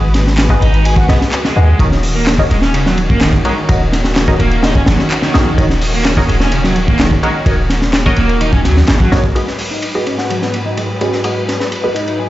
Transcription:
Already playing: G#1 G#3 F#4 B4
0.14 snare, ride
0.27 snare
0.37 snare, clap, ride
0.49 F#4 G#4 B4 D#5, kick
0.61 G#1 D#4, ride
0.74 ride
0.85 G#4, ride
0.96 F#4, kick
1.08 B1 B3 F#4 G#4 B4 D#5, snare, ride
1.21 snare
1.32 clap, ride
1.44 G#3, snare
1.56 D#2 F#4 G#4 B4 D#5
1.79 D#1 D#3 C#4 F#4 A#4 C#5 D#5, kick, ride
1.92 snare
2.03 open hi-hat
2.15 A#3
2.27 snare, clap, ride
2.38 F#4 A#4 C#5 D#5, kick
2.50 D#1 G#3, ride
2.62 C#4, snare
2.74 C#3, ride
2.86 F#3, snare
2.98 ride
3.10 A#3, kick
3.21 D#3, snare, clap, ride
3.33 kick
3.45 G#3 F#4 A#4 C#5 D#5, ride
3.69 D#1 F#4 A#4 C#5 D#5, kick, ride
3.93 snare, ride
4.04 snare
4.16 snare, clap, ride
4.28 F#4 A#4 C#5 D#5, kick
4.39 D#1 A#3, ride
4.51 ride
4.63 D#4, snare, ride
4.75 C#4, kick
4.86 F#1 F#3, snare, ride
4.99 snare
5.11 clap, ride
5.22 D#3, snare
5.34 A#1 F#4 A#4 C#5 D#5, snare, ride
5.58 D#1 D#3 F#4 A#4 C#5 D#5, kick, ride
5.70 snare
5.81 open hi-hat
5.94 A#3
6.04 snare, clap, ride
6.17 F#4 A#4 C#5 D#5, kick
6.29 D#1 G#3, ride
6.40 C#4, snare
6.52 C#3, ride
6.64 F#3, snare
6.76 ride
6.88 A#3, kick
6.99 D#3, snare, clap, ride
7.11 kick
7.23 G#3 F#4 A#4 C#5 D#5, ride
7.46 D#1 F#4 A#4 C#5 D#5, kick, ride
7.70 snare, ride
7.82 snare
7.93 snare, clap, ride
8.06 F#4 A#4 C#5 D#5, kick
8.16 D#1 A#3, ride
8.29 ride
8.41 D#4, ride
8.53 C#4, kick
8.65 D#2 F#3, snare, ride
8.77 snare
8.87 G#1, snare, clap, ride
9.00 F#3, kick
9.12 A#1 F#4 A#4 C#5 D#5, snare, ride
9.24 kick
9.35 G#2 F#3 G#3 F#4 G#4 B4 D#5, ride
9.48 snare
9.59 open hi-hat
9.71 D#4
9.82 ride
9.95 F#4 G#4 B4 D#5
10.06 C#4, ride
10.18 F#4, snare
10.30 F#3, ride
10.42 B3, snare
10.54 ride
10.66 D#4
10.77 G#3, ride
11.01 C#4 F#4 G#4 B4 D#5, ride
11.13 snare
11.24 F#4 G#4 B4 D#5, ride
11.49 snare, ride
11.60 snare
11.72 ride
11.84 F#4 G#4 B4 D#5
11.96 D#4, ride
12.08 ride
12.19 G#4

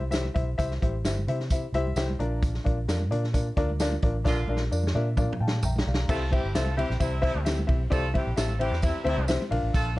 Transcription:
Already playing: C2
0.01 high conga
0.11 E4 G4 C5 E5, snare, closed hi-hat, tambourine, muted conga
0.25 high conga
0.34 B1 E4 G4 C5 E5, kick, closed hi-hat, low conga
0.58 C2 E4 G4 C5 E5, kick, closed hi-hat, tambourine, muted conga, low conga
0.71 snare
0.81 A1 E4 G4 C5 E5, kick, closed hi-hat, high conga
1.04 G1 E4 G4 C5 E5, snare, closed hi-hat, tambourine, muted conga
1.18 high conga
1.27 C3 E4 G4 C5 E5, closed hi-hat, low conga
1.40 snare
1.50 E4 G4 C5 E5, kick, closed hi-hat, tambourine, muted conga
1.73 C2 E4 G4 C5 E5, closed hi-hat, muted conga
1.87 high conga
1.96 C2 E4 G4 C5 E5 G5, snare, closed hi-hat, tambourine, muted conga
2.10 high conga
2.19 A#1 D4 F4 A#4 D5 A#5, closed hi-hat, muted conga, low conga
2.42 kick, closed hi-hat, tambourine, muted conga, low conga
2.54 snare
2.64 A#1 D4 F4 A#4 D5, kick, closed hi-hat, high conga
2.88 F2 D4 F4 A#4 D5, snare, closed hi-hat, tambourine
3.00 high conga
3.10 A#2 D4 F4 A#4 D5, closed hi-hat, muted conga, low conga
3.24 snare
3.33 D4 F4 A#4 D5, kick, closed hi-hat, tambourine, muted conga
3.56 D2 D4 F4 A#4 D5, kick, closed hi-hat, muted conga
3.70 high conga
3.79 D4 F4 A#4 D5, snare, closed hi-hat, tambourine, muted conga
3.92 high conga
4.02 A1 D4 F4 A#4 D5, kick, closed hi-hat, low conga
4.24 A#1 D3 A#3 D4 F4 A#4 D5, kick, snare, tambourine, muted conga, low conga
4.48 A#1 D4 F4 A#4 D5, muted conga, high conga
4.57 snare
4.71 F2 D4 F4 A#4 D5, tambourine
4.84 snare, high conga
4.94 A#2 D4 F4 A#4 D5 E5, muted conga, low conga
5.17 D4 F4 A#4 D5 F5, kick, mid tom, tambourine, muted conga
5.33 mid tom
5.39 A#2 F5 G5 A5, muted conga
5.48 snare
5.52 high conga
5.62 A#1 E5 G5 A#5, floor tom, tambourine, muted conga
5.76 snare, high conga
5.87 B1 D5 F5, muted conga, low conga
5.94 snare
6.08 C2 A3 C4 E4 F4 G4 A4 C5 E5, kick, crash, tambourine, low conga
6.30 E3 C4 E4 G4 C5 E5, kick, ride, high conga
6.44 G1
6.54 C2 A3 C4 E4 F4 G4 A4 C5 E5, snare, ride, tambourine
6.66 high conga
6.77 E3 C4 E4 G4 C5 E5, ride, low conga
6.90 A#1, snare
7.00 C2 C3 G3 C4 E4 G4 C5 E5, kick, ride, tambourine, muted conga
7.22 C3 G3 C4 E4 G4 C5 E5, kick, ride, muted conga
7.35 D2, high conga
7.45 C4 E4 G4 C5 E5, snare, ride, tambourine
7.59 high conga
7.67 B1 C4 E4 G4 C5 E5, kick, ride, muted conga, low conga
7.90 C2 A3 C4 E4 F4 G4 A4 C5 D5, kick, ride, tambourine, muted conga, low conga
8.14 E3 C4 E4 G4 C5 E5, kick, ride, muted conga, high conga
8.27 A#1
8.36 A1 A3 C4 E4 F4 G4 A4 C5 E5, snare, ride, tambourine, muted conga
8.49 high conga
8.59 E3 C4 E4 G4 C5 E5, ride, low conga
8.71 E2, snare
8.82 C3 G3 C4 E4 G4 C5 E5, kick, ride, tambourine, muted conga
9.04 D2 C3 G3 C4 E4 G4 C5 E5, ride, muted conga
9.09 E4
9.17 C2, high conga
9.28 C4 E4 G4 C5 E5, snare, ride, tambourine, muted conga
9.42 high conga
9.50 A#1 D4 F4 A#4 D5 F5, open hi-hat, ride, muted conga, low conga
9.63 A1
9.74 A#1 A3 F4 A4, kick, hi-hat pedal, ride, tambourine, low conga

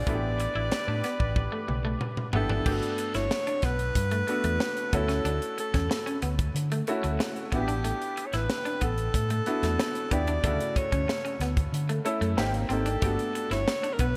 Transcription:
Already playing: D5
0.07 A1 A3 B3 D4 E4 F#4 G4 B4 D5, kick, closed hi-hat
0.14 G4
0.40 muted clean electric guitar stroke, closed hi-hat
0.55 A1 E4
0.71 muted clean electric guitar stroke, muted fingered electric bass stroke, snare, closed hi-hat
0.88 A2 D4
1.04 B3, snare, closed hi-hat
1.20 A1, kick
1.36 kick, high tom
1.52 A3
1.68 B1, muted clean electric guitar stroke, mid tom
1.85 A3
2.01 muted clean electric guitar stroke, mid tom
2.17 mid tom
2.33 G#1 B3 D4 E4 G4 A4, floor tom
2.49 D4, floor tom
2.66 G1 A3 B3 D4 F#4 G4, kick, crash
2.82 closed hi-hat
2.98 muted clean electric guitar stroke, closed hi-hat
3.14 G1 E4 C#5, snare, closed hi-hat
3.31 muted clean electric guitar stroke, snare
3.47 D4, closed hi-hat
3.62 B1 B3 B4, kick, snare, closed hi-hat
3.79 closed hi-hat
3.95 G2, kick, closed hi-hat
4.11 A3, closed hi-hat
4.27 A3 B3 D4 F#4, muted clean electric guitar stroke, closed hi-hat
4.44 E2 A3, closed hi-hat
4.60 muted clean electric guitar stroke, snare
4.77 closed hi-hat
4.93 D2 A3 B3 C#4 E4 F#4 A4, kick, closed hi-hat
5.08 C#4, snare, closed hi-hat
5.25 D2 D4, closed hi-hat
5.42 closed hi-hat
5.58 A4, muted clean electric guitar stroke, closed hi-hat
5.74 E2 C#4, kick, snare, closed hi-hat
5.90 muted clean electric guitar stroke, snare
6.06 C#4, closed hi-hat
6.22 D2 B3, closed hi-hat
6.39 kick, closed hi-hat
6.55 D3, closed hi-hat
6.72 A3, closed hi-hat
6.87 A3 C#4 E4 F#4, muted clean electric guitar stroke, closed hi-hat
7.03 D2 A3, closed hi-hat
7.19 muted clean electric guitar stroke, snare
7.36 closed hi-hat
7.52 A1 B3 D4 E4 F#4 G4, kick, closed hi-hat
7.60 G4
7.68 D4, closed hi-hat
7.84 A3, closed hi-hat
8.02 closed hi-hat
8.17 muted clean electric guitar stroke, closed hi-hat
8.26 C#5
8.33 A1 E4 B4, snare, closed hi-hat
8.50 muted clean electric guitar stroke, snare
8.65 D4, closed hi-hat
8.81 A1 B3 A4, kick, closed hi-hat
8.98 closed hi-hat
9.14 A2, kick, closed hi-hat
9.30 A3, closed hi-hat
9.46 B3 D4 E4 F#4, muted clean electric guitar stroke, closed hi-hat
9.63 E2 A3, snare, closed hi-hat
9.79 muted clean electric guitar stroke, snare
9.95 closed hi-hat
10.11 D#2 B3 D4 E4 G4 D5, kick, closed hi-hat
10.27 D4, closed hi-hat
10.44 D2 C#3 A3 D4 E4 F#4, kick, closed hi-hat
10.61 closed hi-hat
10.76 C#5, muted clean electric guitar stroke, kick, closed hi-hat
10.92 D2 C#4, kick, closed hi-hat
11.08 muted clean electric guitar stroke, snare
11.25 C#4, closed hi-hat
11.40 D2 B3, snare, closed hi-hat
11.57 kick, closed hi-hat
11.73 D3, closed hi-hat
11.89 A3, closed hi-hat
12.05 A3 C#4 E4 A4, muted clean electric guitar stroke, closed hi-hat
12.21 F#2 A3, closed hi-hat
12.37 G#1 A#3 C4 D#4 G4, muted clean electric guitar stroke, snare
12.54 closed hi-hat
12.69 G#1 A#3 C4 D#4 G4 A4, closed hi-hat
12.86 D4, closed hi-hat
13.02 G1 A3 B3 D4 F#4 G4, kick, closed hi-hat
13.19 closed hi-hat
13.35 muted clean electric guitar stroke, closed hi-hat
13.51 G1 E4 C#5, snare, closed hi-hat
13.68 muted clean electric guitar stroke, snare
13.83 D4, closed hi-hat
13.93 A#4
13.99 B1 B3 B4, kick, closed hi-hat

